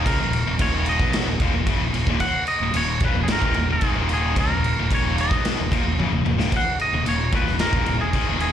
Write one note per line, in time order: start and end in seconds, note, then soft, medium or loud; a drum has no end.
0.06 0.18 C#2 loud
0.06 0.19 C#3 medium
0.06 0.19 G#3 loud
0.06 0.56 A#4 medium
0.06 kick loud
0.06 crash loud
0.20 0.45 D#1 medium
0.20 0.42 D#2 medium
0.20 0.42 A#2 medium
0.33 crash medium
0.46 0.59 D#1 medium
0.46 0.59 D#2 medium
0.46 0.60 A#2 medium
0.59 0.97 D#1 loud
0.59 1.00 D#2 loud
0.59 1.00 A#2 loud
0.59 1.00 D#3 loud
0.59 0.78 C#5 medium
0.59 kick loud
0.59 crash loud
0.79 0.87 C#5 medium
0.86 1.92 D#5 medium
0.86 crash medium
1.00 1.25 B1 loud
1.00 1.26 B2 medium
1.00 1.27 F#3 medium
1.00 1.27 B3 loud
1.00 kick loud
1.00 snare soft
1.13 snare loud
1.13 crash medium
1.25 1.39 D#1 medium
1.25 1.40 D#2 medium
1.25 1.41 A#2 medium
1.40 1.53 D#1 loud
1.40 1.54 D#2 medium
1.40 1.54 A#2 loud
1.40 kick loud
1.40 crash medium
1.54 1.66 D#1 medium
1.54 1.68 D#2 medium
1.54 1.68 A#2 medium
1.66 1.79 F#1 medium
1.66 1.80 F#2 loud
1.66 1.81 C#3 loud
1.66 kick loud
1.66 crash medium
1.80 1.92 D#1 medium
1.80 1.94 D#2 medium
1.80 1.95 A#2 medium
1.92 2.06 D#1 medium
1.92 2.08 D#2 medium
1.92 2.09 A#2 medium
1.92 crash medium
2.07 2.20 D#1 loud
2.07 2.21 D#2 loud
2.07 2.22 A#2 loud
2.07 kick loud
2.20 2.47 F#5 loud
2.20 kick loud
2.20 crash medium
2.47 2.76 D#5 loud
2.47 crash medium
2.60 2.73 D#1 medium
2.60 2.75 D#2 medium
2.60 2.75 A#2 medium
2.74 2.99 D#1 medium
2.74 2.98 D#2 medium
2.74 2.98 A#2 medium
2.74 3.04 C#5 medium
2.74 crash medium
3.00 3.14 D#1 loud
3.00 3.16 D#2 medium
3.00 kick loud
3.00 crash medium
3.04 3.16 A#2 medium
3.04 3.23 B4 medium
3.14 3.27 D#1 medium
3.14 3.30 D#2 medium
3.14 3.30 A#2 medium
3.23 3.30 G#4 medium
3.28 3.41 G#1 loud
3.28 3.42 G#2 loud
3.28 3.43 D#3 loud
3.28 snare loud
3.28 crash medium
3.32 3.72 A#4 medium
3.42 3.55 D#1 medium
3.42 3.56 D#2 loud
3.42 3.56 A#2 medium
3.42 kick loud
3.54 3.68 D#1 medium
3.54 3.69 D#2 medium
3.54 crash medium
3.58 3.70 A#2 medium
3.69 3.81 D#1 medium
3.69 3.83 D#2 medium
3.69 3.83 A#2 medium
3.69 4.12 G#4 medium
3.81 3.94 G#1 loud
3.81 3.96 G#2 loud
3.81 3.96 D#3 loud
3.81 kick loud
3.81 crash medium
3.95 4.33 D#1 loud
3.95 4.36 D#2 medium
3.95 4.37 A#2 medium
3.95 4.37 D#3 medium
4.09 crash medium
4.13 4.39 G#4 medium
4.36 4.49 C#2 loud
4.36 4.50 C#3 medium
4.36 4.51 G#3 loud
4.36 kick loud
4.36 crash medium
4.40 4.94 A#4 medium
4.49 4.75 D#1 medium
4.49 4.72 D#2 medium
4.49 4.73 A#2 medium
4.64 crash medium
4.78 4.90 D#1 medium
4.78 4.91 D#2 medium
4.78 4.91 A#2 medium
4.91 5.28 D#1 medium
4.91 5.31 D#2 medium
4.91 5.31 A#2 loud
4.91 5.31 D#3 loud
4.91 kick loud
4.91 crash medium
4.95 5.20 C#5 medium
5.18 6.23 D#5 medium
5.18 crash medium
5.31 5.56 B1 loud
5.31 5.58 B2 medium
5.31 5.58 F#3 medium
5.31 5.58 B3 medium
5.31 kick loud
5.31 snare soft
5.45 snare loud
5.45 crash medium
5.59 5.71 D#1 medium
5.59 5.71 D#2 medium
5.59 5.71 A#2 medium
5.71 5.84 D#1 medium
5.71 5.84 D#2 medium
5.71 5.85 A#2 loud
5.71 kick loud
5.71 crash medium
5.85 5.98 D#1 medium
5.85 5.99 D#2 medium
5.85 5.99 A#2 medium
5.98 6.10 F#1 medium
5.98 6.12 F#2 medium
5.98 6.12 C#3 loud
5.98 high tom medium
6.10 6.24 D#1 medium
6.10 6.24 D#2 medium
6.10 6.24 A#2 medium
6.10 mid tom medium
6.25 6.37 D#1 medium
6.25 6.37 D#2 medium
6.25 6.38 A#2 medium
6.25 mid tom medium
6.38 6.51 D#1 loud
6.38 6.51 D#2 medium
6.38 6.52 A#2 loud
6.38 snare medium
6.52 kick loud
6.52 crash medium
6.57 6.80 F#5 loud
6.79 7.08 D#5 loud
6.79 crash medium
6.93 7.05 D#1 medium
6.93 7.04 D#2 medium
6.93 7.05 A#2 medium
7.06 7.31 D#1 medium
7.06 7.27 D#2 medium
7.06 7.28 A#2 medium
7.06 7.32 C#5 loud
7.06 crash medium
7.32 7.46 D#1 loud
7.32 7.46 D#2 medium
7.32 7.46 A#2 medium
7.32 7.60 B4 medium
7.32 kick loud
7.32 crash medium
7.46 7.59 D#1 medium
7.46 7.61 D#2 medium
7.46 7.60 A#2 medium
7.46 snare soft
7.59 7.72 G#1 medium
7.59 7.73 G#2 medium
7.59 7.73 D#3 loud
7.59 8.01 A#4 loud
7.59 snare loud
7.59 crash medium
7.73 7.86 D#1 medium
7.73 7.86 D#2 loud
7.73 7.86 A#2 loud
7.73 kick loud
7.86 8.00 D#1 medium
7.86 8.00 D#2 medium
7.86 8.00 A#2 medium
7.86 crash medium
8.01 8.13 D#1 medium
8.01 8.14 D#2 medium
8.01 8.14 A#2 medium
8.01 8.40 G#4 medium
8.13 8.26 G#1 medium
8.13 8.27 G#2 loud
8.13 8.27 D#3 loud
8.13 kick loud
8.13 crash medium
8.27 8.52 D#1 loud
8.27 8.52 D#2 medium
8.27 8.52 A#2 medium
8.27 8.52 D#3 medium
8.40 8.52 G#4 medium
8.40 crash medium